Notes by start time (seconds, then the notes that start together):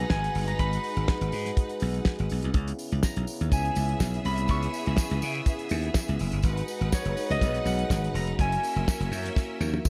Already playing: G#3 D#4 F#4 G#4 B4 F#5
0.00 A#5
0.10 G#1 G#5, kick, snare
0.24 closed hi-hat
0.35 G1, open hi-hat
0.48 A#5, closed hi-hat
0.59 G#1 B5, kick, closed hi-hat
0.73 closed hi-hat
0.84 open hi-hat
0.96 G#1, closed hi-hat
1.08 kick, snare
1.21 G#1, closed hi-hat
1.32 G#2, open hi-hat
1.45 snare, closed hi-hat
1.57 kick, closed hi-hat
1.69 closed hi-hat
1.80 B1, open hi-hat
1.94 closed hi-hat
2.05 kick, snare
2.19 G#1, closed hi-hat
2.30 B1, open hi-hat
2.42 C2, closed hi-hat
2.54 C#2 C#3 B3 C#4 E4, kick, closed hi-hat
2.68 closed hi-hat
2.79 open hi-hat, tambourine
2.92 C#2, closed hi-hat
3.03 A#5, kick, snare, tambourine
3.16 B1, closed hi-hat
3.27 open hi-hat, tambourine
3.41 D#2, closed hi-hat
3.51 C#2 B3 G#4 E5 G#5, kick, closed hi-hat, tambourine
3.65 closed hi-hat
3.75 C#2, open hi-hat, tambourine
3.89 closed hi-hat
4.00 B1, kick, snare, tambourine
4.14 closed hi-hat
4.25 C2 B5, open hi-hat
4.37 closed hi-hat
4.48 C#2 C#6, kick, closed hi-hat, tambourine
4.63 closed hi-hat
4.73 open hi-hat, tambourine
4.86 C#2, closed hi-hat
4.97 kick, snare, tambourine
5.10 C#2, closed hi-hat
5.22 C#3, open hi-hat, tambourine
5.35 closed hi-hat
5.46 kick, closed hi-hat, tambourine
5.59 closed hi-hat
5.69 D#2, open hi-hat, tambourine
5.83 closed hi-hat
5.94 kick, snare, tambourine
6.08 C#2, closed hi-hat
6.19 F#1, open hi-hat, tambourine
6.32 G1, closed hi-hat
6.42 G#1 G#3 D#4 F#4 G#4 B4 F#5, kick, closed hi-hat, tambourine
6.57 closed hi-hat
6.68 open hi-hat, tambourine
6.81 G#1, closed hi-hat
6.92 C#5, kick, snare, tambourine
7.05 F#1, closed hi-hat
7.17 open hi-hat, tambourine
7.30 C#2 D#5, snare, closed hi-hat
7.41 B1, kick, closed hi-hat, tambourine
7.54 closed hi-hat
7.65 B1 F#5, open hi-hat, tambourine
7.79 closed hi-hat
7.90 G#1, kick, snare, tambourine
8.04 closed hi-hat
8.14 F1 A#5, open hi-hat, tambourine
8.27 closed hi-hat
8.39 F#1 A#3 C#4 E4 A#4 E5 G#5, kick, closed hi-hat
8.52 closed hi-hat
8.63 open hi-hat, tambourine
8.76 F#1, closed hi-hat
8.88 kick, snare, tambourine
9.00 F#1, closed hi-hat
9.11 F#2, open hi-hat, tambourine
9.25 snare, closed hi-hat
9.36 kick, snare, tambourine
9.60 D#2, high tom, tambourine
9.74 high tom
9.85 kick, mid tom, tambourine